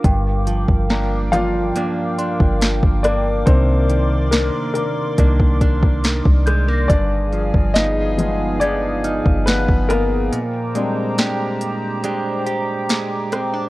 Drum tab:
HH |x-x-x-x-x-x-x-x-|x-x-x-x-x-x-x-x-|x-x-x-x-x-x-x-x-|x-x-x-x-x-x-x-x-|
SD |----o-------o-r-|----o-------o-r-|----o-------o-r-|----o-------o-r-|
BD |o--o-------o-o--|o-------oooo-o--|o--o-------o-o--|----------------|